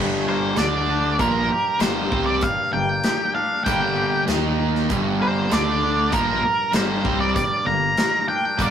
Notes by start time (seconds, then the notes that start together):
Already playing: G1 G2 D3 G3
0.29 A#3 C5
0.56 D2 D3 A3 D4 D5, snare, closed hi-hat
0.90 D4
1.19 A#1 G2 A#2 F3 A#3 A#4, kick, closed hi-hat
1.50 G4, muted picked electric bass stroke, muted overdriven electric guitar stroke
1.79 G1 G2 D3 C5, snare, closed hi-hat
1.83 D3 G3 A#3
2.12 C2 C3 G3 C4, kick
2.26 D5
2.41 G2 F5, muted picked electric bass stroke, muted overdriven electric guitar stroke, kick, closed hi-hat
2.73 G1 G2 D3 A#3 G5
3.04 G4, snare, closed hi-hat
3.35 D4 F5
3.64 G1 G2 D3 G3 A#3 G5, kick, closed hi-hat
3.97 G4
4.28 D#2 D#3 A#3 D#4, snare, closed hi-hat
4.59 D#3
4.76 snare
4.90 G1 G2 D3 G3, kick, closed hi-hat
5.20 A#3 C5
5.51 D2 D3 A3 D4 D5, snare, closed hi-hat
5.82 D4
6.12 A#1 G2 A#2 F3 A#3 A#4, kick, closed hi-hat
6.42 A#4, muted overdriven electric guitar stroke, muted picked electric bass stroke
6.46 muted overdriven electric guitar stroke
6.72 G1 G2 D3 G3 A#3 C5, snare, closed hi-hat
6.76 G2 D3 G3
7.05 C2 C3 G3 C4, kick
7.20 D5
7.35 G2 D5, muted picked electric bass stroke, muted overdriven electric guitar stroke, kick, closed hi-hat
7.65 G1 G2 D3 A#3 A#5
7.69 G2 D3
7.97 A#4, snare, closed hi-hat
8.27 D4 G5
8.58 G1 G2 D3 G3 A#3 D5, kick, closed hi-hat